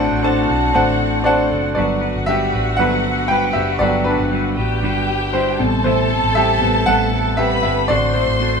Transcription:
Already playing: A2 A3 D4 F#4 A4 C5 F#5
0.00 A3 C4 F#4
0.11 A1
0.23 A3 C4 D4 F#4 A4 C5 A5
0.49 B1 A3 C4 F#4 A4
0.73 A1 A2 D3 A3 C4 D4 F#4 A4 C5 F#5
0.99 A3 C4 F#4 A4
1.24 A3 C4 D4 F#4 A4 C5 D5 F#5
1.28 A4
1.51 F#1 A3 C4 F#4 A4
1.75 G1 F#3 G3 A3 B3 D4 F#4 B4 D5 F#5
2.01 D4 F#4 B4
2.16 G1
2.26 G3 D4 F#4 G4 E5
2.31 B4
2.52 A1 D4 F#4 B4
2.77 G1 F#3 G3 A3 B3 D4 F#4 B4 F#5
2.81 B4
3.04 D4 F#4 B4
3.28 G3 D4 F#4 B4 G5
3.32 B4
3.53 F#1 F#4 G4 B4 E5
3.58 D4
3.79 G1 F#3 G3 A3 B3 D4 F#4 B4 D5
4.04 D4 F#4 B4
4.09 D4
4.19 G1
4.31 G3 D4 F#4 B4
4.57 A1 D4 F#4 G4 B4 G5
4.83 G1 G3 D4 F#4 B4
5.08 D4 F#4 B4
5.33 G3 D4 E4 F#4 B4 C5
5.59 A1 B2 C3 G3 C4 E4 A4 A5
5.84 A2 E3 G3 C4 E4 A4 C5
6.10 G3 C4 E4 A4
6.24 A1
6.35 G3 C4 E4 G4 A4 E5
6.61 A1 C3 G3 B3 C4 E4 A4
6.86 A1 A2 E3 G3 C4 E4 A4 F#5
7.12 G3 C4 E4 A4
7.37 G3 C4 E4 G4 A4 B4 E5 B5
7.63 G1 G3 C4 E4 G4 A4 E5
7.88 A1 A2 D3 A3 C4 F#4 A4 C5 D5 C6
8.13 C4 E4 F#4 A4 C5
8.17 A3
8.28 A1
8.39 A3 C4 F#4 A4

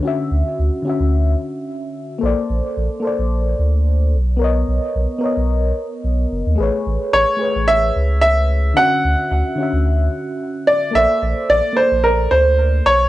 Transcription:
0.00 D3 C#4
0.05 F#4 E5
0.31 D2
0.59 D2
0.82 D3 C#4
0.87 F#4 E5
1.00 D2
2.19 A#1 A#3 A4
2.23 C5 D5
2.50 A#1
2.77 A#1
3.00 A#3 A4
3.05 C5 D5
3.19 A#1
3.59 D2
4.13 B1
4.37 B3 A#4
4.42 C#5 D#5
4.68 B1
4.95 B1
5.18 B3 A#4
5.24 C#5 D#5
5.37 B1
6.04 B1
6.32 F#1
6.46 D#2
6.55 A1 A3 G#4
6.60 B4 C#5
6.86 A1
7.13 A1 C#5
7.37 A3 G#4
7.41 B4 C#5
7.55 A1
7.68 E5
7.96 C#2
8.21 E5
8.74 D3 C#4 F#5
8.78 F#4 E5
9.04 D2
9.31 D2
9.55 D3 C#4
9.60 F#4 E5
9.73 D2
10.67 D5
10.91 A#1 A#3 A4
10.95 C5 D5 E5
11.22 A#1
11.49 A#1 D5
11.73 A#3 A4 C5
11.78 C5 D5
11.91 A#1
12.04 A#4
12.31 D2 C5
12.86 B1 C#5

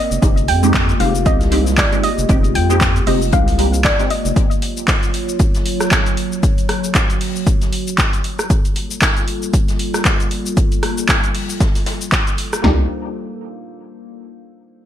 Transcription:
Already playing: G#3 A#3 F4 G4 D#5
0.11 F1, shaker
0.22 F1 G#3 C4 D#4 G4, kick, closed hi-hat, shaker
0.37 closed hi-hat, shaker
0.48 F2 G5, closed hi-hat, open hi-hat
0.63 G#3 C4 D#4 G4, closed hi-hat, shaker
0.74 kick, snare, clap, closed hi-hat, shaker
0.89 closed hi-hat, shaker
0.99 F1 G#3 C4 D#4 G4 F5, closed hi-hat, open hi-hat
1.15 shaker
1.25 C2 G#3 C4 D#4 G4 D#5, kick, closed hi-hat, shaker
1.41 snare, closed hi-hat, shaker
1.51 G#3 C4 D#4 G4, closed hi-hat, open hi-hat
1.67 snare, closed hi-hat, shaker
1.77 D5, kick, snare, clap, closed hi-hat, shaker
1.92 G#3 C4 D#4 G4, closed hi-hat, shaker
2.03 D#5, closed hi-hat, open hi-hat
2.18 F1, shaker
2.29 F1 G#3 C4 D#4 G4, kick, closed hi-hat, shaker
2.44 closed hi-hat, shaker
2.55 F2 G5, closed hi-hat, open hi-hat
2.70 G#3 C4 D#4 G4, closed hi-hat, shaker
2.81 kick, snare, clap, closed hi-hat, shaker
2.96 closed hi-hat, shaker
3.06 F1 G#3 C4 D#4 G4 D#5, open hi-hat
3.22 shaker
3.32 C2 G#3 C4 D#4 G4 F5, kick, closed hi-hat, shaker
3.48 snare, open hi-hat, shaker
3.58 G#3 C4 D#4 G4, closed hi-hat, open hi-hat
3.74 closed hi-hat, shaker
3.84 D5, kick, snare, clap, closed hi-hat, shaker
3.99 G#3 C4 D#4 G4, closed hi-hat, shaker
4.10 D#5, closed hi-hat, open hi-hat
4.25 F1, closed hi-hat, shaker
4.36 F#3 F4 C#5, kick, closed hi-hat, shaker
4.51 closed hi-hat, shaker
4.62 closed hi-hat, open hi-hat
4.77 closed hi-hat, shaker
4.88 kick, snare, clap, closed hi-hat, shaker
5.03 closed hi-hat, shaker
5.14 closed hi-hat, open hi-hat
5.29 shaker
5.39 kick, closed hi-hat, shaker
5.55 snare, closed hi-hat, shaker
5.66 closed hi-hat, open hi-hat
5.80 cross-stick, snare, closed hi-hat, shaker
5.91 kick, snare, clap, closed hi-hat, shaker
6.06 closed hi-hat, shaker
6.17 closed hi-hat, open hi-hat
6.32 shaker
6.43 F#4, kick, closed hi-hat, shaker
6.58 closed hi-hat, shaker
6.69 cross-stick, closed hi-hat, open hi-hat
6.84 closed hi-hat, shaker
6.95 kick, snare, clap, closed hi-hat, shaker
7.10 closed hi-hat, shaker
7.21 open hi-hat
7.36 shaker
7.47 kick, closed hi-hat, shaker
7.61 snare, closed hi-hat, shaker
7.73 closed hi-hat, open hi-hat
7.87 closed hi-hat, shaker
7.98 kick, snare, clap, closed hi-hat, shaker
8.13 closed hi-hat, shaker
8.24 G3 A#3 F4 A4, closed hi-hat, open hi-hat
8.39 cross-stick, shaker
8.50 kick, closed hi-hat, shaker
8.65 closed hi-hat, shaker
8.76 closed hi-hat, open hi-hat
8.91 closed hi-hat, shaker
9.02 kick, snare, clap, closed hi-hat, shaker
9.17 closed hi-hat, shaker
9.28 closed hi-hat, open hi-hat
9.43 shaker
9.54 kick, closed hi-hat, shaker
9.68 snare, closed hi-hat, shaker
9.79 closed hi-hat, open hi-hat
9.94 cross-stick, snare, closed hi-hat, shaker
10.05 kick, snare, clap, closed hi-hat, shaker
10.20 closed hi-hat, shaker
10.31 closed hi-hat, open hi-hat
10.46 shaker
10.57 kick, closed hi-hat, shaker
10.72 closed hi-hat, shaker
10.83 cross-stick, closed hi-hat, open hi-hat
10.98 closed hi-hat, shaker
11.09 kick, snare, clap, closed hi-hat, shaker
11.24 closed hi-hat, shaker
11.34 open hi-hat
11.50 shaker
11.60 kick, snare, closed hi-hat, shaker
11.75 snare, open hi-hat, shaker
11.86 snare, closed hi-hat, open hi-hat
12.01 closed hi-hat, shaker
12.12 kick, snare, clap, closed hi-hat, shaker
12.27 closed hi-hat, shaker
12.38 closed hi-hat, open hi-hat
12.53 cross-stick, closed hi-hat, shaker
12.62 C2 A#3 D4 D#4 G4, snare, floor tom

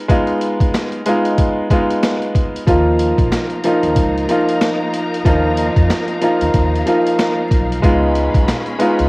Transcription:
0.08 G#3 B3 D#4 F4, kick, closed hi-hat
0.27 closed hi-hat
0.41 closed hi-hat
0.60 kick, closed hi-hat
0.74 snare, clap, closed hi-hat
0.92 closed hi-hat
1.05 G#3 B3 D#4 F4, closed hi-hat
1.25 closed hi-hat
1.38 kick, closed hi-hat
1.70 G#3 B3 D#4 F4, kick, closed hi-hat
1.91 closed hi-hat
2.03 snare, clap, closed hi-hat
2.22 closed hi-hat
2.35 kick, closed hi-hat
2.56 closed hi-hat
2.67 D#2 F3 A#3 D#4 F4 A#4 F5 A#5, kick, closed hi-hat
2.99 closed hi-hat
3.18 A#1, kick, closed hi-hat
3.32 snare, clap, closed hi-hat
3.50 closed hi-hat
3.64 F3 A#3 D#4 F4, closed hi-hat
3.83 D#2, closed hi-hat
3.96 C#2, kick, closed hi-hat
4.18 closed hi-hat
4.29 F3 A#3 D#4 F4, closed hi-hat
4.49 closed hi-hat
4.61 snare, clap, closed hi-hat
4.94 closed hi-hat
5.14 closed hi-hat
5.25 D#2 F3 A#3 D#4 F4, kick, closed hi-hat
5.57 closed hi-hat
5.76 F2, kick, closed hi-hat
5.90 snare, clap, closed hi-hat
6.08 closed hi-hat
6.21 F3 A#3 D#4 F4, closed hi-hat
6.41 D#2, closed hi-hat
6.54 D#2, kick, closed hi-hat
6.76 closed hi-hat
6.86 F3 A#3 D#4 F4, closed hi-hat
7.07 closed hi-hat
7.19 snare, clap, closed hi-hat
7.51 B1, kick, closed hi-hat
7.72 closed hi-hat
7.82 C#2 G#3 B3 C#4 D#4 F4 G#4 B5, kick, closed hi-hat
8.15 closed hi-hat
8.34 B1, kick, closed hi-hat
8.48 snare, clap, closed hi-hat
8.66 closed hi-hat
8.79 G#3 B3 D#4 F4, closed hi-hat
8.99 C#2, closed hi-hat

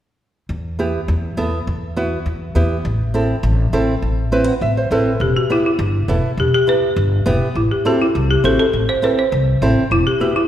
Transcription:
0.49 E2
0.79 B3 E4 G4
1.08 E2
1.37 E2 B3 E4 A4
1.67 E2
1.97 B3 E4 F#4
2.26 E2
2.55 E2 B3 E4 G4
2.85 A1
3.14 C4 E4 A4
3.43 A1
3.73 A1 C4 E4 A4
4.02 A1
4.32 C4 E4 B4
4.47 F#5
4.61 A1 E5
4.77 C5
4.91 A1 C4 E4 A4 B4
5.20 E1 G4
5.37 F#4
5.50 B3 E4 G4
5.66 E4
5.79 G1
6.08 E1 B3 E4 A4
6.37 E1 G4
6.54 G4
6.67 B3 E4 G4 B4
6.96 G1
7.26 E1 B3 E4 G4
7.55 A1 E4
7.71 G4
7.85 C4 E4 F#4 A4
8.01 E4
8.15 C2
8.31 G4
8.44 A1 C4 E4 F#4 A4
8.60 A4
8.73 A1
8.89 C5
9.02 C4 E4 A4 B4
9.19 C5
9.32 C2
9.62 A1 C4 E4 A4
9.91 E1 E4
10.07 G4
10.20 B3 E4 F#4 G4
10.36 E4

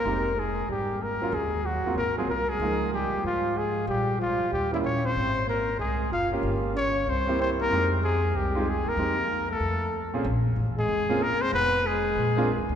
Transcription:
Already playing: A#3 A#4
0.05 F1 G#3 C4 D#4 G4
0.37 G#3 G#4
0.68 G#1 G3 G4
1.00 A#3 A#4
1.22 F#3 A#3 C#4 F4
1.32 D#2 G#3 G#4
1.64 F#3 F#4
1.85 F#3 A#3 C4 F4, muted upright bass stroke
1.95 G#1 A#3 A#4
2.17 F#3 G#3 A#3 C4 F4 G#4
2.27 C2 A#3 A#4
2.49 G#3 G#4
2.60 C#2 F3 A#3 D#4 F4
2.92 G3 G4
3.13 muted upright bass stroke
3.23 G#2 F3 F4
3.56 G#3 G#4
3.87 A#1 G3 G4
4.19 F3 F4
4.40 muted upright bass stroke
4.51 D#2 G3 G4
4.71 E3 G3 A#3 C#4 E4
4.82 A#1 C#4 C#5
5.03 C4 C5
5.15 G#1
5.46 A#3 A#4
5.78 C2 G#3 G#4
6.12 F#1 F4 F5
6.32 A#3 C#4 F4 G4
6.43 G1
6.75 C#4 C#5
7.06 C2 C4 C5
7.27 A#3 C4 E4 G4
7.39 C4 C5
7.59 A#3 A#4
7.70 F2 G#3 C4 D#4 G4
8.03 G#3 G#4
8.34 C2 G3 G4
8.55 G#3 C4 D#4 F4
8.67 G#3 G#4
8.86 C3 A#3 A#4
8.97 F2 G#3 C4 D#4 G4
9.50 A3 A4
9.60 F2
10.14 A#2 C4 C#4 F4 G#4
10.24 A#1
10.56 A1
10.77 G#3 G#4
10.88 F1
11.09 A#3 C4 C#4 F4 G#4
11.21 A#3 A#4
11.41 C4 C5
11.52 F1 B3 B4
11.85 G#3 G#4
12.16 A#1
12.37 A#3 C4 D4 F4 G#4
12.69 D2

